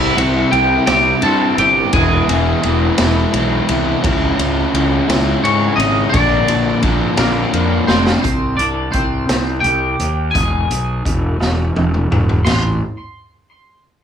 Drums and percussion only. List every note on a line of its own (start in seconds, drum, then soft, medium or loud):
0.18 ride loud
0.53 ride medium
0.87 snare loud
0.87 ride loud
1.22 ride medium
1.58 ride medium
1.93 kick loud
1.93 ride loud
2.29 ride medium
2.63 ride medium
2.98 snare loud
2.98 ride loud
3.34 ride medium
3.69 ride medium
4.04 kick loud
4.04 ride loud
4.39 ride medium
4.75 ride medium
5.10 snare loud
5.10 ride loud
5.45 ride medium
5.80 ride medium
6.14 kick loud
6.14 ride loud
6.48 ride medium
6.83 kick medium
6.83 ride medium
7.17 snare loud
7.17 ride loud
7.53 ride medium
7.88 snare medium
8.07 snare loud
8.24 kick loud
8.24 closed hi-hat medium
8.59 closed hi-hat medium
8.93 kick medium
8.93 closed hi-hat medium
9.29 snare loud
9.29 closed hi-hat medium
9.64 closed hi-hat medium
10.00 closed hi-hat medium
10.35 kick loud
10.35 closed hi-hat loud
10.71 closed hi-hat medium
11.05 kick medium
11.05 closed hi-hat medium
11.41 snare medium
11.76 high tom medium
11.94 mid tom medium
12.12 mid tom loud
12.29 floor tom medium
12.47 snare loud
12.47 crash medium